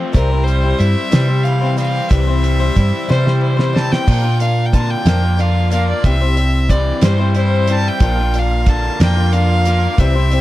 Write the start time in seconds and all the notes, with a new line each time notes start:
Already playing: F3 A3 C4 F4 C5
0.13 C2 C3 E3 G3 C4 E4 A#4 C5, kick, closed hi-hat
0.30 G3 C4 E4 C5
0.44 G3 C5, closed hi-hat
0.61 G3 C4 E4 C5
0.78 G2 G3 C4 E4 C5 E5, closed hi-hat
1.11 C3 E3 G3 C4 E4 C5, snare, closed hi-hat
1.27 G3 C4 E4 C5
1.43 E3 F5, closed hi-hat
1.61 G3 C4 E4 C5
1.76 G3 C4 C5 F5, closed hi-hat
2.09 C2 C3 E3 G3 C4 E4 C5 E5, kick, closed hi-hat
2.27 G3 C4 E4 C5
2.43 G3, closed hi-hat
2.60 G3 C4 E4 C5
2.76 G2 G3 C4 E4 C5, kick, closed hi-hat
3.08 C3 E3 G3 C4 E4 C5, snare
3.24 G3 C4 E4 C5, snare
3.42 E3 C5
3.57 G3 C4 E4 C5, snare
3.73 G3 C4 E4 C5 A5, snare
3.92 G5, snare
4.07 A#2 F3 A#3 D4 F4 A#4, kick, crash
4.22 A#3 D4 F4 A#4
4.39 A#3 D4 F4 A#4 F5, closed hi-hat
4.66 G5
4.72 D3 A#3 D4 F4 A#4 A5, kick, closed hi-hat
4.90 G5
5.05 F2 A#2 F3 A#3 D4 F4 A#4, snare, closed hi-hat
5.23 A#3 D4 F4 A#4
5.37 A#3 D4 F4 A#4 F5, closed hi-hat
5.71 A#3 D4 F4 A#4 F5, closed hi-hat
5.89 D5
6.04 C2 C3 E3 G3 C4 E4 C5 E5, kick, closed hi-hat
6.21 G3 C4 E4 C5
6.36 G3 C4 E4 C5, closed hi-hat
6.69 E3 G3 C4 E4 C5 D5, kick, closed hi-hat
7.01 G2 C3 E3 G3 C4 E4 C5, snare, closed hi-hat
7.18 G3 C4 E4 C5
7.35 G3 C4 E4 C5, closed hi-hat
7.67 G3 C4 E4 C5 A5, closed hi-hat
7.88 G5
8.00 A#1 A#2 F3 A#3 D4 F4 A#4 F5, kick, closed hi-hat
8.17 A#3 D4 F4 A#4
8.34 A#3 D4 F4 A#4, closed hi-hat
8.39 F5
8.66 D3 A#3 D4 F4 A#4 A5, kick, closed hi-hat
9.00 F2 A#2 F3 A#3 D4 F4 A#4 G5, snare, closed hi-hat
9.15 A#3 D4 F4 A#4
9.32 A#3 D4 F4 A#4 F5, closed hi-hat
9.65 A#3 D4 F4 A#4, closed hi-hat
9.98 C2 C3 E3 G3 C4 E4 G4 C5 E5 G5, kick, closed hi-hat
10.16 G3 C4 E4 C5
10.30 G3 C4 E4 C5, closed hi-hat